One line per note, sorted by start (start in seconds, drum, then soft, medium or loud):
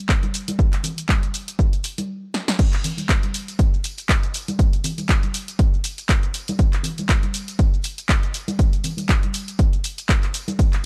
0.09 kick loud
0.09 clap loud
0.09 shaker soft
0.23 closed hi-hat soft
0.23 high conga medium
0.23 shaker soft
0.34 open hi-hat medium
0.34 tambourine medium
0.34 shaker medium
0.48 closed hi-hat medium
0.48 tambourine medium
0.48 high conga medium
0.48 shaker soft
0.59 kick loud
0.59 tambourine soft
0.59 shaker soft
0.73 clap soft
0.73 closed hi-hat medium
0.73 shaker soft
0.83 open hi-hat loud
0.83 tambourine medium
0.83 low conga medium
0.83 shaker medium
0.98 closed hi-hat medium
0.98 tambourine medium
0.98 shaker soft
1.09 kick loud
1.09 clap loud
1.09 tambourine soft
1.09 high conga medium
1.09 shaker soft
1.23 closed hi-hat medium
1.23 shaker soft
1.34 open hi-hat medium
1.34 tambourine medium
1.34 shaker medium
1.48 closed hi-hat medium
1.48 tambourine medium
1.48 shaker soft
1.59 kick loud
1.59 shaker soft
1.73 closed hi-hat soft
1.73 shaker soft
1.84 open hi-hat loud
1.84 tambourine loud
1.84 shaker medium
1.98 closed hi-hat medium
1.98 tambourine medium
1.98 high conga medium
1.98 shaker soft
2.34 snare medium
2.48 snare loud
2.59 kick loud
2.59 closed hi-hat medium
2.59 tambourine soft
2.59 crash loud
2.59 shaker soft
2.73 clap soft
2.73 closed hi-hat soft
2.73 shaker soft
2.84 open hi-hat loud
2.84 tambourine medium
2.84 low conga medium
2.84 shaker medium
2.97 closed hi-hat medium
2.97 tambourine medium
2.97 high conga medium
2.97 shaker soft
3.09 kick loud
3.09 clap loud
3.09 closed hi-hat medium
3.09 shaker soft
3.23 closed hi-hat soft
3.23 high conga medium
3.23 shaker soft
3.34 open hi-hat loud
3.34 tambourine loud
3.34 shaker medium
3.48 closed hi-hat medium
3.48 tambourine soft
3.48 shaker soft
3.59 kick loud
3.59 closed hi-hat medium
3.59 shaker soft
3.74 shaker soft
3.84 open hi-hat loud
3.84 tambourine medium
3.84 shaker medium
3.98 closed hi-hat medium
3.98 tambourine medium
3.98 shaker soft
4.09 kick loud
4.09 clap loud
4.09 closed hi-hat medium
4.09 shaker soft
4.23 closed hi-hat soft
4.23 shaker soft
4.34 open hi-hat medium
4.34 tambourine loud
4.34 shaker medium
4.48 closed hi-hat medium
4.48 tambourine medium
4.48 high conga medium
4.48 shaker soft
4.59 kick loud
4.59 closed hi-hat medium
4.59 shaker soft
4.73 closed hi-hat soft
4.73 shaker soft
4.84 open hi-hat loud
4.84 tambourine loud
4.84 low conga medium
4.84 shaker medium
4.98 closed hi-hat medium
4.98 tambourine medium
4.98 high conga medium
4.98 shaker soft
5.09 kick loud
5.09 clap loud
5.09 closed hi-hat medium
5.09 shaker soft
5.23 closed hi-hat soft
5.23 high conga medium
5.23 shaker soft
5.34 open hi-hat loud
5.34 tambourine medium
5.34 shaker medium
5.48 closed hi-hat medium
5.48 tambourine medium
5.48 shaker soft
5.59 kick loud
5.59 closed hi-hat medium
5.59 shaker soft
5.74 shaker soft
5.84 open hi-hat loud
5.84 tambourine medium
5.84 shaker medium
5.98 closed hi-hat medium
5.98 tambourine medium
5.98 shaker soft
6.09 kick loud
6.09 clap loud
6.09 closed hi-hat medium
6.09 tambourine soft
6.09 shaker soft
6.23 closed hi-hat soft
6.23 shaker soft
6.34 open hi-hat loud
6.34 tambourine medium
6.34 shaker medium
6.48 closed hi-hat medium
6.48 tambourine medium
6.48 high conga loud
6.48 shaker soft
6.59 kick loud
6.59 closed hi-hat medium
6.59 shaker soft
6.73 clap soft
6.73 closed hi-hat soft
6.73 shaker soft
6.83 open hi-hat loud
6.83 tambourine medium
6.83 low conga medium
6.83 shaker medium
6.98 closed hi-hat medium
6.98 tambourine soft
6.98 high conga medium
6.98 shaker soft
7.09 kick loud
7.09 clap loud
7.09 closed hi-hat medium
7.09 shaker soft
7.23 closed hi-hat soft
7.23 high conga medium
7.23 shaker soft
7.34 open hi-hat loud
7.34 tambourine medium
7.34 shaker medium
7.48 closed hi-hat medium
7.48 tambourine medium
7.48 shaker soft
7.59 kick loud
7.59 closed hi-hat medium
7.59 shaker soft
7.74 shaker soft
7.84 open hi-hat loud
7.84 tambourine medium
7.84 shaker medium
7.98 closed hi-hat medium
7.98 tambourine soft
7.98 shaker soft
8.09 kick loud
8.09 clap loud
8.09 closed hi-hat medium
8.09 shaker soft
8.23 closed hi-hat soft
8.23 shaker soft
8.34 open hi-hat loud
8.34 tambourine medium
8.34 shaker medium
8.48 closed hi-hat medium
8.48 tambourine soft
8.48 high conga medium
8.48 shaker soft
8.59 kick loud
8.59 closed hi-hat medium
8.59 tambourine soft
8.59 shaker soft
8.73 closed hi-hat soft
8.73 shaker soft
8.84 open hi-hat loud
8.84 tambourine medium
8.84 low conga medium
8.84 shaker medium
8.97 closed hi-hat medium
8.97 tambourine medium
8.97 high conga medium
8.97 shaker soft
9.09 kick loud
9.09 clap loud
9.09 closed hi-hat medium
9.09 shaker soft
9.23 closed hi-hat soft
9.23 high conga medium
9.23 shaker soft
9.34 open hi-hat loud
9.34 tambourine medium
9.34 shaker medium
9.48 closed hi-hat soft
9.48 tambourine soft
9.48 shaker soft
9.59 kick loud
9.59 closed hi-hat medium
9.59 shaker soft
9.73 closed hi-hat soft
9.73 shaker soft
9.84 open hi-hat loud
9.84 tambourine medium
9.84 shaker medium
9.98 closed hi-hat medium
9.98 tambourine medium
9.98 shaker soft
10.09 kick loud
10.09 clap loud
10.09 closed hi-hat medium
10.09 shaker soft
10.23 clap soft
10.23 closed hi-hat soft
10.23 shaker soft
10.34 open hi-hat loud
10.34 tambourine medium
10.34 shaker medium
10.48 closed hi-hat medium
10.48 tambourine medium
10.48 high conga loud
10.48 shaker soft
10.59 kick loud
10.59 closed hi-hat medium
10.59 ride medium
10.59 tambourine soft
10.59 shaker soft
10.73 clap soft
10.73 closed hi-hat soft
10.73 shaker soft